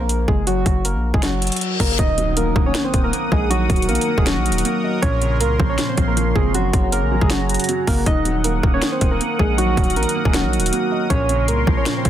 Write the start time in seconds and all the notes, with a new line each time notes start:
Already playing: A#1
0.00 A#3 A#4
0.09 closed hi-hat
0.28 F#1 G#3 G#4, kick
0.47 F#3 F#4, closed hi-hat
0.66 F#1, kick, closed hi-hat
0.85 A#3 A#4, closed hi-hat
0.95 A#1
1.14 F#1 G#3 G#4, kick
1.22 F#3 F#4, finger snap, snare, closed hi-hat, reverse cymbal
1.42 closed hi-hat
1.47 closed hi-hat
1.52 closed hi-hat
1.56 closed hi-hat
1.61 closed hi-hat
1.80 F#1 A#3 A#4, kick, open hi-hat
1.99 D#1 D#3 D#4 A#4 D#5 F#5 D#6, kick, closed hi-hat, impact
2.18 F#3, closed hi-hat
2.37 D#3 A#3 A#4, closed hi-hat
2.56 D#1 A#3, kick
2.66 C#4 C#5
2.74 D#3, finger snap, snare, closed hi-hat
2.84 C4 C5
2.94 D#1, kick, closed hi-hat
3.04 A#3 A#4
3.13 A#3, closed hi-hat
3.32 A#1 G#3 G#4 D#5, kick
3.50 D#3 F#3 F#4, closed hi-hat
3.70 D#1 F#3, kick, closed hi-hat
3.76 closed hi-hat
3.82 closed hi-hat
3.89 A#1 D#3 A#3 A#4, closed hi-hat
3.95 closed hi-hat
4.01 closed hi-hat
4.08 A#3
4.18 D#1 G#3 G#4, kick
4.26 D#3 F#3 F#4, finger snap, snare, closed hi-hat
4.37 A#1
4.46 closed hi-hat
4.51 D#1, closed hi-hat
4.58 closed hi-hat
4.64 A#3, closed hi-hat
4.84 D#5
5.02 A#1 A#2 C#4 C#5 C6, kick, closed hi-hat
5.21 C#3, closed hi-hat
5.41 C2 A#2 A#3 A#4, closed hi-hat
5.59 A#1 F3, kick
5.69 C#4 C#5
5.78 A#2, finger snap, snare, closed hi-hat
5.89 C4 C5
5.97 A#1, kick, closed hi-hat
6.08 A#3 A#4
6.17 F3, closed hi-hat
6.35 F#1 G#3 C4 G#4, kick
6.54 F#2 F#3 F#4 G#4 F#5 A#5, closed hi-hat
6.73 F#1 C#3, kick, closed hi-hat
6.92 F#2 A#3 A#4, closed hi-hat
7.03 A#1
7.12 F#3
7.21 F#1 G#3 G#4, kick
7.30 F#2 F#3 F#4, finger snap, snare, closed hi-hat
7.49 closed hi-hat
7.54 closed hi-hat
7.59 closed hi-hat
7.64 closed hi-hat
7.69 F#3, closed hi-hat
7.87 F#1 A#3 A#4, kick, open hi-hat
8.06 D#1 D#3 D#4 A#4 D#5 D#6, kick, closed hi-hat
8.25 F#3, closed hi-hat
8.44 D#3 A#3 A#4, closed hi-hat
8.63 D#1 A#3, kick
8.74 C#4 C#5
8.82 D#3, finger snap, snare, closed hi-hat
8.92 C4 C5
9.01 D#1, kick, closed hi-hat
9.11 A#3 A#4
9.21 A#3, closed hi-hat
9.39 A#1 G#3 G#4 D#5, kick
9.58 D#3 F#3 F#4, closed hi-hat
9.77 D#1 F#3, kick, closed hi-hat
9.84 closed hi-hat
9.90 closed hi-hat
9.96 A#1 D#3 A#3 A#4, closed hi-hat
10.03 closed hi-hat
10.09 closed hi-hat
10.15 A#3
10.25 D#1 G#3 G#4, kick
10.33 D#3 F#3 F#4, finger snap, snare, closed hi-hat
10.44 A#1
10.53 closed hi-hat
10.58 D#1, closed hi-hat
10.66 closed hi-hat
10.72 A#3, closed hi-hat
10.91 D#5
11.10 A#1 A#2 C#4 A#4 C#5 C6, kick, closed hi-hat
11.29 C#3, closed hi-hat
11.48 C2 A#2 A#3 A#4, closed hi-hat
11.67 A#1 F3, kick
11.77 C#4 C#5
11.85 A#2, finger snap, snare, closed hi-hat
11.96 C4 C5
12.05 A#1, kick, closed hi-hat